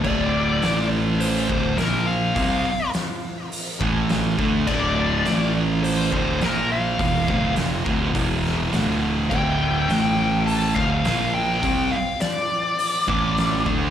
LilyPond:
<<
  \new Staff \with { instrumentName = "Lead electric guitar" } { \time 4/4 \key d \minor \tempo 4 = 104 d''4. r8 c''8 c''8 bes'8 f''8~ | f''4 r2. | d''4. r8 c''8 c''8 bes'8 f''8~ | f''4 r2. |
g''2 a''8 f''4 g''8~ | g''8 f''8 d''2~ d''8 r8 | }
  \new Staff \with { instrumentName = "Distorted electric guitar" } { \clef bass \time 4/4 \key d \minor <d, a, d>4 <a, e a>4. <d, a, d>8 <bes, f bes>4 | <c g c'>8 r2 <a, e a>4 <d a d'>8 | <d, a, d>4 <a, e a>4. <d, a, d>8 <bes, f bes>4 | <e, b, e>8 <d, a, d>8 <f, c f>8 <d, a, d>8 <e, b, e>4 <d, a, d>4 |
<d, a, d>4 <a, e a>4. <d, a, d>8 <bes, f bes>4 | <c g c'>8 r2 <a, e a>4 <d a d'>8 | }
  \new Staff \with { instrumentName = "Distorted electric guitar" } { \clef bass \time 4/4 \key d \minor <d, a, d>4 <a, e a>4. <d, a, d>8 <bes, f bes>4 | <c g c'>8 r2 <a, e a>4 <d a d'>8 | <d, a, d>4 <a, e a>4. <d, a, d>8 <bes, f bes>4 | <e, b, e>8 <d, a, d>8 <f, c f>8 <d, a, d>8 <e, b, e>4 <d, a, d>4 |
<d, a, d>4 <a, e a>4. <d, a, d>8 <bes, f bes>4 | <c g c'>8 r2 <a, e a>4 <d a d'>8 | }
  \new Staff \with { instrumentName = "Fingered electric bass" } { \clef bass \time 4/4 \key d \minor d,,4 a,,4. d,,8 bes,,4 | c,8 r2 a,,4 d,8 | d,,4 a,,4. d,,8 bes,,4 | e,,8 d,,8 f,,8 d,,8 e,,4 d,,4 |
d,,4 a,,4. d,,8 bes,,4 | c,8 r2 a,,4 d,8 | }
  \new DrumStaff \with { instrumentName = "Drums" } \drummode { \time 4/4 <cymc bd>4 <hho sn>4 hho8 bd8 <hho sn>4 | <hho bd>4 <hho sn>4 hho8 bd8 <hho sn>8 bd8 | <cymc bd>4 <hho sn>4 hho8 bd8 <hho sn>4 | <hho bd>8 bd8 <hho sn>8 bd8 <hho bd>8 sn8 <hho sn>4 |
<cymc bd>4 <hho sn>4 hho8 <bd sn>8 <hho sn>4 | <hho bd>4 <hho sn>4 hho8 bd8 <hho sn>8 bd8 | }
>>